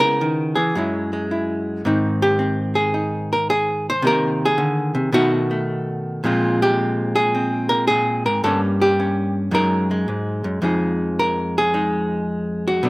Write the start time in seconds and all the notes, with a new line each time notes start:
Already playing: C#3 G#3 B3 E4
0.00 A#4
0.21 D#3
0.55 E3 G#4
0.75 F#2 F#3 G#3 E4
1.13 G#3
1.31 E4
1.85 G#2 D#3 C4 D#4
2.22 G4
2.39 C4
2.75 G#4
2.94 D#4
3.33 A#4
3.50 G#4
3.90 C5
4.02 C3 D#3 A#3 D#4
4.07 A#4
4.45 G#4
4.58 D3
4.95 C3
5.12 B2 D#3 A3 D#4 F#4
5.51 A3
6.24 A#2 F3 G#3 C4 F4
6.62 G4
7.16 G#4
7.35 C4
7.69 A#4
7.87 A#2 G#4
8.26 G#2 A#4
8.44 G2 G3 A#3 C#4 A4
8.82 G4
9.00 C#4
9.51 F#2 F#3 G#3 D#4 A#4
9.91 G#3
10.08 G#2
10.44 F#2
10.62 F2 F3 G#3 D#4 G#4
11.19 A#4
11.58 G#4
11.74 G#3 D#4
12.68 F#4
12.83 B2 F#3 A3 D4